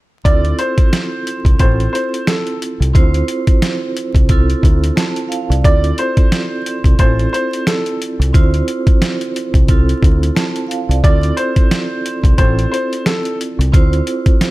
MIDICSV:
0, 0, Header, 1, 5, 480
1, 0, Start_track
1, 0, Key_signature, -1, "minor"
1, 0, Tempo, 674157
1, 179, Time_signature, 4, 2, 24, 8
1, 10328, End_track
2, 0, Start_track
2, 0, Title_t, "Upright piano"
2, 0, Program_c, 0, 0
2, 178, Note_on_c, 0, 74, 110
2, 394, Note_off_c, 0, 74, 0
2, 418, Note_on_c, 0, 72, 91
2, 1110, Note_off_c, 0, 72, 0
2, 1139, Note_on_c, 0, 72, 84
2, 1355, Note_off_c, 0, 72, 0
2, 1373, Note_on_c, 0, 72, 83
2, 1592, Note_off_c, 0, 72, 0
2, 1622, Note_on_c, 0, 69, 78
2, 1836, Note_off_c, 0, 69, 0
2, 4021, Note_on_c, 0, 74, 107
2, 4236, Note_off_c, 0, 74, 0
2, 4263, Note_on_c, 0, 72, 94
2, 4953, Note_off_c, 0, 72, 0
2, 4980, Note_on_c, 0, 72, 93
2, 5196, Note_off_c, 0, 72, 0
2, 5218, Note_on_c, 0, 72, 92
2, 5434, Note_off_c, 0, 72, 0
2, 5465, Note_on_c, 0, 69, 82
2, 5678, Note_off_c, 0, 69, 0
2, 7859, Note_on_c, 0, 74, 116
2, 8075, Note_off_c, 0, 74, 0
2, 8094, Note_on_c, 0, 72, 91
2, 8788, Note_off_c, 0, 72, 0
2, 8814, Note_on_c, 0, 72, 89
2, 9032, Note_off_c, 0, 72, 0
2, 9053, Note_on_c, 0, 72, 90
2, 9272, Note_off_c, 0, 72, 0
2, 9302, Note_on_c, 0, 69, 88
2, 9517, Note_off_c, 0, 69, 0
2, 10328, End_track
3, 0, Start_track
3, 0, Title_t, "Vibraphone"
3, 0, Program_c, 1, 11
3, 174, Note_on_c, 1, 60, 73
3, 179, Note_on_c, 1, 64, 72
3, 184, Note_on_c, 1, 65, 73
3, 189, Note_on_c, 1, 69, 83
3, 301, Control_c, 1, 64, 127
3, 1089, Note_off_c, 1, 60, 0
3, 1092, Note_off_c, 1, 64, 0
3, 1094, Note_off_c, 1, 65, 0
3, 1097, Note_off_c, 1, 69, 0
3, 1130, Note_on_c, 1, 60, 74
3, 1135, Note_on_c, 1, 64, 67
3, 1139, Note_on_c, 1, 65, 65
3, 1145, Note_on_c, 1, 69, 81
3, 2047, Note_off_c, 1, 60, 0
3, 2050, Note_off_c, 1, 64, 0
3, 2052, Note_off_c, 1, 65, 0
3, 2055, Note_off_c, 1, 69, 0
3, 2088, Note_on_c, 1, 60, 86
3, 2093, Note_on_c, 1, 64, 82
3, 2098, Note_on_c, 1, 65, 82
3, 2103, Note_on_c, 1, 72, 105
3, 3006, Note_off_c, 1, 60, 0
3, 3009, Note_off_c, 1, 64, 0
3, 3011, Note_off_c, 1, 65, 0
3, 3014, Note_off_c, 1, 72, 0
3, 3059, Note_on_c, 1, 60, 89
3, 3065, Note_on_c, 1, 64, 84
3, 3070, Note_on_c, 1, 65, 76
3, 3074, Note_on_c, 1, 69, 100
3, 3530, Note_on_c, 1, 81, 69
3, 3762, Note_off_c, 1, 81, 0
3, 3764, Note_on_c, 1, 77, 74
3, 3900, Note_off_c, 1, 77, 0
3, 3912, Note_on_c, 1, 74, 67
3, 3972, Note_off_c, 1, 60, 0
3, 3975, Note_off_c, 1, 64, 0
3, 3977, Note_off_c, 1, 65, 0
3, 3980, Note_off_c, 1, 69, 0
3, 4016, Note_on_c, 1, 60, 74
3, 4021, Note_on_c, 1, 64, 71
3, 4026, Note_on_c, 1, 65, 73
3, 4028, Control_c, 1, 64, 0
3, 4031, Note_on_c, 1, 69, 88
3, 4141, Note_off_c, 1, 74, 0
3, 4143, Control_c, 1, 64, 127
3, 4931, Note_off_c, 1, 60, 0
3, 4933, Note_off_c, 1, 64, 0
3, 4936, Note_off_c, 1, 65, 0
3, 4938, Note_off_c, 1, 69, 0
3, 4971, Note_on_c, 1, 60, 75
3, 4977, Note_on_c, 1, 64, 69
3, 4982, Note_on_c, 1, 65, 68
3, 4986, Note_on_c, 1, 69, 83
3, 5888, Note_off_c, 1, 60, 0
3, 5891, Note_off_c, 1, 64, 0
3, 5893, Note_off_c, 1, 65, 0
3, 5895, Note_off_c, 1, 69, 0
3, 5930, Note_on_c, 1, 60, 87
3, 5935, Note_on_c, 1, 64, 84
3, 5940, Note_on_c, 1, 65, 86
3, 5945, Note_on_c, 1, 72, 104
3, 6847, Note_off_c, 1, 60, 0
3, 6850, Note_off_c, 1, 64, 0
3, 6852, Note_off_c, 1, 65, 0
3, 6855, Note_off_c, 1, 72, 0
3, 6899, Note_on_c, 1, 60, 91
3, 6904, Note_on_c, 1, 64, 83
3, 6909, Note_on_c, 1, 65, 77
3, 6914, Note_on_c, 1, 69, 99
3, 7370, Note_on_c, 1, 81, 66
3, 7603, Note_off_c, 1, 81, 0
3, 7605, Note_on_c, 1, 77, 77
3, 7740, Note_off_c, 1, 77, 0
3, 7754, Note_on_c, 1, 74, 69
3, 7812, Note_off_c, 1, 60, 0
3, 7815, Note_off_c, 1, 64, 0
3, 7817, Note_off_c, 1, 65, 0
3, 7819, Note_off_c, 1, 69, 0
3, 7857, Note_on_c, 1, 60, 77
3, 7862, Note_on_c, 1, 64, 69
3, 7866, Note_on_c, 1, 65, 72
3, 7868, Control_c, 1, 64, 0
3, 7872, Note_on_c, 1, 69, 85
3, 7982, Note_off_c, 1, 74, 0
3, 7995, Control_c, 1, 64, 127
3, 8771, Note_off_c, 1, 60, 0
3, 8773, Note_off_c, 1, 64, 0
3, 8776, Note_off_c, 1, 65, 0
3, 8779, Note_off_c, 1, 69, 0
3, 8811, Note_on_c, 1, 60, 77
3, 8816, Note_on_c, 1, 64, 67
3, 8821, Note_on_c, 1, 65, 64
3, 8827, Note_on_c, 1, 69, 83
3, 9728, Note_off_c, 1, 60, 0
3, 9731, Note_off_c, 1, 64, 0
3, 9733, Note_off_c, 1, 65, 0
3, 9736, Note_off_c, 1, 69, 0
3, 9768, Note_on_c, 1, 60, 91
3, 9773, Note_on_c, 1, 64, 81
3, 9778, Note_on_c, 1, 65, 83
3, 9783, Note_on_c, 1, 72, 104
3, 10328, Note_off_c, 1, 60, 0
3, 10328, Note_off_c, 1, 64, 0
3, 10328, Note_off_c, 1, 65, 0
3, 10328, Note_off_c, 1, 72, 0
3, 10328, End_track
4, 0, Start_track
4, 0, Title_t, "Fingered electric bass"
4, 0, Program_c, 2, 33
4, 179, Note_on_c, 2, 38, 106
4, 369, Note_off_c, 2, 38, 0
4, 1031, Note_on_c, 2, 36, 90
4, 1115, Note_off_c, 2, 36, 0
4, 1137, Note_on_c, 2, 33, 95
4, 1327, Note_off_c, 2, 33, 0
4, 1995, Note_on_c, 2, 36, 91
4, 2077, Note_off_c, 2, 36, 0
4, 2099, Note_on_c, 2, 38, 109
4, 2288, Note_off_c, 2, 38, 0
4, 2952, Note_on_c, 2, 36, 88
4, 3225, Note_off_c, 2, 36, 0
4, 3297, Note_on_c, 2, 38, 102
4, 3487, Note_off_c, 2, 38, 0
4, 3915, Note_on_c, 2, 36, 95
4, 3997, Note_off_c, 2, 36, 0
4, 4019, Note_on_c, 2, 38, 109
4, 4209, Note_off_c, 2, 38, 0
4, 4872, Note_on_c, 2, 36, 91
4, 4956, Note_off_c, 2, 36, 0
4, 4977, Note_on_c, 2, 33, 98
4, 5167, Note_off_c, 2, 33, 0
4, 5834, Note_on_c, 2, 36, 97
4, 5917, Note_off_c, 2, 36, 0
4, 5940, Note_on_c, 2, 38, 107
4, 6129, Note_off_c, 2, 38, 0
4, 6792, Note_on_c, 2, 36, 92
4, 7065, Note_off_c, 2, 36, 0
4, 7138, Note_on_c, 2, 38, 101
4, 7328, Note_off_c, 2, 38, 0
4, 7754, Note_on_c, 2, 36, 92
4, 7837, Note_off_c, 2, 36, 0
4, 7859, Note_on_c, 2, 38, 109
4, 8048, Note_off_c, 2, 38, 0
4, 8712, Note_on_c, 2, 36, 91
4, 8796, Note_off_c, 2, 36, 0
4, 8816, Note_on_c, 2, 33, 92
4, 9007, Note_off_c, 2, 33, 0
4, 9675, Note_on_c, 2, 36, 95
4, 9757, Note_off_c, 2, 36, 0
4, 9779, Note_on_c, 2, 38, 108
4, 9969, Note_off_c, 2, 38, 0
4, 10328, End_track
5, 0, Start_track
5, 0, Title_t, "Drums"
5, 179, Note_on_c, 9, 36, 125
5, 183, Note_on_c, 9, 42, 84
5, 250, Note_off_c, 9, 36, 0
5, 254, Note_off_c, 9, 42, 0
5, 318, Note_on_c, 9, 42, 38
5, 389, Note_off_c, 9, 42, 0
5, 417, Note_on_c, 9, 42, 75
5, 489, Note_off_c, 9, 42, 0
5, 553, Note_on_c, 9, 36, 94
5, 553, Note_on_c, 9, 42, 53
5, 624, Note_off_c, 9, 36, 0
5, 624, Note_off_c, 9, 42, 0
5, 661, Note_on_c, 9, 38, 123
5, 662, Note_on_c, 9, 42, 106
5, 732, Note_off_c, 9, 38, 0
5, 733, Note_off_c, 9, 42, 0
5, 904, Note_on_c, 9, 42, 75
5, 975, Note_off_c, 9, 42, 0
5, 1032, Note_on_c, 9, 36, 88
5, 1040, Note_on_c, 9, 42, 55
5, 1103, Note_off_c, 9, 36, 0
5, 1112, Note_off_c, 9, 42, 0
5, 1135, Note_on_c, 9, 42, 77
5, 1137, Note_on_c, 9, 36, 96
5, 1206, Note_off_c, 9, 42, 0
5, 1208, Note_off_c, 9, 36, 0
5, 1282, Note_on_c, 9, 42, 37
5, 1353, Note_off_c, 9, 42, 0
5, 1389, Note_on_c, 9, 42, 71
5, 1460, Note_off_c, 9, 42, 0
5, 1524, Note_on_c, 9, 42, 55
5, 1595, Note_off_c, 9, 42, 0
5, 1619, Note_on_c, 9, 38, 116
5, 1624, Note_on_c, 9, 42, 93
5, 1690, Note_off_c, 9, 38, 0
5, 1695, Note_off_c, 9, 42, 0
5, 1757, Note_on_c, 9, 42, 36
5, 1828, Note_off_c, 9, 42, 0
5, 1866, Note_on_c, 9, 42, 78
5, 1938, Note_off_c, 9, 42, 0
5, 2009, Note_on_c, 9, 42, 60
5, 2080, Note_off_c, 9, 42, 0
5, 2099, Note_on_c, 9, 36, 117
5, 2103, Note_on_c, 9, 42, 86
5, 2170, Note_off_c, 9, 36, 0
5, 2174, Note_off_c, 9, 42, 0
5, 2238, Note_on_c, 9, 42, 38
5, 2309, Note_off_c, 9, 42, 0
5, 2337, Note_on_c, 9, 42, 79
5, 2408, Note_off_c, 9, 42, 0
5, 2472, Note_on_c, 9, 42, 54
5, 2473, Note_on_c, 9, 36, 94
5, 2543, Note_off_c, 9, 42, 0
5, 2544, Note_off_c, 9, 36, 0
5, 2579, Note_on_c, 9, 38, 125
5, 2580, Note_on_c, 9, 42, 102
5, 2650, Note_off_c, 9, 38, 0
5, 2651, Note_off_c, 9, 42, 0
5, 2824, Note_on_c, 9, 42, 75
5, 2895, Note_off_c, 9, 42, 0
5, 2952, Note_on_c, 9, 36, 88
5, 2959, Note_on_c, 9, 42, 53
5, 3023, Note_off_c, 9, 36, 0
5, 3031, Note_off_c, 9, 42, 0
5, 3054, Note_on_c, 9, 42, 77
5, 3057, Note_on_c, 9, 36, 91
5, 3125, Note_off_c, 9, 42, 0
5, 3128, Note_off_c, 9, 36, 0
5, 3202, Note_on_c, 9, 42, 37
5, 3273, Note_off_c, 9, 42, 0
5, 3297, Note_on_c, 9, 36, 89
5, 3309, Note_on_c, 9, 42, 73
5, 3369, Note_off_c, 9, 36, 0
5, 3380, Note_off_c, 9, 42, 0
5, 3443, Note_on_c, 9, 42, 55
5, 3514, Note_off_c, 9, 42, 0
5, 3539, Note_on_c, 9, 38, 119
5, 3544, Note_on_c, 9, 42, 92
5, 3610, Note_off_c, 9, 38, 0
5, 3615, Note_off_c, 9, 42, 0
5, 3676, Note_on_c, 9, 42, 36
5, 3747, Note_off_c, 9, 42, 0
5, 3786, Note_on_c, 9, 42, 81
5, 3858, Note_off_c, 9, 42, 0
5, 3928, Note_on_c, 9, 42, 60
5, 3999, Note_off_c, 9, 42, 0
5, 4019, Note_on_c, 9, 36, 123
5, 4022, Note_on_c, 9, 42, 84
5, 4090, Note_off_c, 9, 36, 0
5, 4093, Note_off_c, 9, 42, 0
5, 4158, Note_on_c, 9, 42, 37
5, 4229, Note_off_c, 9, 42, 0
5, 4257, Note_on_c, 9, 42, 76
5, 4329, Note_off_c, 9, 42, 0
5, 4393, Note_on_c, 9, 42, 55
5, 4394, Note_on_c, 9, 36, 96
5, 4464, Note_off_c, 9, 42, 0
5, 4465, Note_off_c, 9, 36, 0
5, 4500, Note_on_c, 9, 38, 127
5, 4501, Note_on_c, 9, 42, 104
5, 4571, Note_off_c, 9, 38, 0
5, 4572, Note_off_c, 9, 42, 0
5, 4744, Note_on_c, 9, 42, 77
5, 4815, Note_off_c, 9, 42, 0
5, 4872, Note_on_c, 9, 36, 89
5, 4881, Note_on_c, 9, 42, 53
5, 4943, Note_off_c, 9, 36, 0
5, 4952, Note_off_c, 9, 42, 0
5, 4975, Note_on_c, 9, 42, 78
5, 4977, Note_on_c, 9, 36, 94
5, 5047, Note_off_c, 9, 42, 0
5, 5048, Note_off_c, 9, 36, 0
5, 5122, Note_on_c, 9, 42, 37
5, 5193, Note_off_c, 9, 42, 0
5, 5229, Note_on_c, 9, 42, 73
5, 5300, Note_off_c, 9, 42, 0
5, 5364, Note_on_c, 9, 42, 53
5, 5436, Note_off_c, 9, 42, 0
5, 5460, Note_on_c, 9, 38, 118
5, 5465, Note_on_c, 9, 42, 94
5, 5531, Note_off_c, 9, 38, 0
5, 5536, Note_off_c, 9, 42, 0
5, 5598, Note_on_c, 9, 42, 38
5, 5669, Note_off_c, 9, 42, 0
5, 5708, Note_on_c, 9, 42, 81
5, 5779, Note_off_c, 9, 42, 0
5, 5851, Note_on_c, 9, 42, 60
5, 5922, Note_off_c, 9, 42, 0
5, 5940, Note_on_c, 9, 36, 119
5, 5944, Note_on_c, 9, 42, 87
5, 6011, Note_off_c, 9, 36, 0
5, 6016, Note_off_c, 9, 42, 0
5, 6079, Note_on_c, 9, 42, 37
5, 6150, Note_off_c, 9, 42, 0
5, 6179, Note_on_c, 9, 42, 79
5, 6250, Note_off_c, 9, 42, 0
5, 6314, Note_on_c, 9, 36, 100
5, 6314, Note_on_c, 9, 42, 54
5, 6385, Note_off_c, 9, 36, 0
5, 6385, Note_off_c, 9, 42, 0
5, 6420, Note_on_c, 9, 38, 124
5, 6421, Note_on_c, 9, 42, 106
5, 6491, Note_off_c, 9, 38, 0
5, 6492, Note_off_c, 9, 42, 0
5, 6559, Note_on_c, 9, 42, 37
5, 6630, Note_off_c, 9, 42, 0
5, 6665, Note_on_c, 9, 42, 74
5, 6736, Note_off_c, 9, 42, 0
5, 6792, Note_on_c, 9, 36, 91
5, 6800, Note_on_c, 9, 42, 52
5, 6863, Note_off_c, 9, 36, 0
5, 6871, Note_off_c, 9, 42, 0
5, 6895, Note_on_c, 9, 42, 74
5, 6897, Note_on_c, 9, 36, 95
5, 6966, Note_off_c, 9, 42, 0
5, 6968, Note_off_c, 9, 36, 0
5, 7043, Note_on_c, 9, 42, 38
5, 7114, Note_off_c, 9, 42, 0
5, 7138, Note_on_c, 9, 36, 90
5, 7150, Note_on_c, 9, 42, 70
5, 7209, Note_off_c, 9, 36, 0
5, 7221, Note_off_c, 9, 42, 0
5, 7285, Note_on_c, 9, 42, 54
5, 7356, Note_off_c, 9, 42, 0
5, 7379, Note_on_c, 9, 38, 114
5, 7384, Note_on_c, 9, 42, 92
5, 7451, Note_off_c, 9, 38, 0
5, 7456, Note_off_c, 9, 42, 0
5, 7517, Note_on_c, 9, 42, 37
5, 7588, Note_off_c, 9, 42, 0
5, 7626, Note_on_c, 9, 42, 81
5, 7697, Note_off_c, 9, 42, 0
5, 7769, Note_on_c, 9, 42, 60
5, 7840, Note_off_c, 9, 42, 0
5, 7859, Note_on_c, 9, 36, 120
5, 7863, Note_on_c, 9, 42, 86
5, 7930, Note_off_c, 9, 36, 0
5, 7934, Note_off_c, 9, 42, 0
5, 7998, Note_on_c, 9, 42, 39
5, 8069, Note_off_c, 9, 42, 0
5, 8098, Note_on_c, 9, 42, 77
5, 8169, Note_off_c, 9, 42, 0
5, 8232, Note_on_c, 9, 42, 53
5, 8233, Note_on_c, 9, 36, 94
5, 8304, Note_off_c, 9, 36, 0
5, 8304, Note_off_c, 9, 42, 0
5, 8340, Note_on_c, 9, 38, 126
5, 8340, Note_on_c, 9, 42, 104
5, 8411, Note_off_c, 9, 38, 0
5, 8412, Note_off_c, 9, 42, 0
5, 8584, Note_on_c, 9, 42, 79
5, 8655, Note_off_c, 9, 42, 0
5, 8712, Note_on_c, 9, 36, 91
5, 8720, Note_on_c, 9, 42, 54
5, 8783, Note_off_c, 9, 36, 0
5, 8791, Note_off_c, 9, 42, 0
5, 8816, Note_on_c, 9, 42, 80
5, 8817, Note_on_c, 9, 36, 95
5, 8887, Note_off_c, 9, 42, 0
5, 8888, Note_off_c, 9, 36, 0
5, 8962, Note_on_c, 9, 42, 38
5, 9033, Note_off_c, 9, 42, 0
5, 9069, Note_on_c, 9, 42, 71
5, 9140, Note_off_c, 9, 42, 0
5, 9204, Note_on_c, 9, 42, 54
5, 9276, Note_off_c, 9, 42, 0
5, 9299, Note_on_c, 9, 38, 121
5, 9304, Note_on_c, 9, 42, 90
5, 9370, Note_off_c, 9, 38, 0
5, 9375, Note_off_c, 9, 42, 0
5, 9436, Note_on_c, 9, 42, 37
5, 9508, Note_off_c, 9, 42, 0
5, 9547, Note_on_c, 9, 42, 81
5, 9618, Note_off_c, 9, 42, 0
5, 9689, Note_on_c, 9, 42, 61
5, 9760, Note_off_c, 9, 42, 0
5, 9779, Note_on_c, 9, 36, 123
5, 9784, Note_on_c, 9, 42, 87
5, 9851, Note_off_c, 9, 36, 0
5, 9855, Note_off_c, 9, 42, 0
5, 9918, Note_on_c, 9, 42, 37
5, 9990, Note_off_c, 9, 42, 0
5, 10018, Note_on_c, 9, 42, 78
5, 10089, Note_off_c, 9, 42, 0
5, 10153, Note_on_c, 9, 42, 54
5, 10154, Note_on_c, 9, 36, 98
5, 10224, Note_off_c, 9, 42, 0
5, 10225, Note_off_c, 9, 36, 0
5, 10260, Note_on_c, 9, 38, 127
5, 10261, Note_on_c, 9, 42, 103
5, 10328, Note_off_c, 9, 38, 0
5, 10328, Note_off_c, 9, 42, 0
5, 10328, End_track
0, 0, End_of_file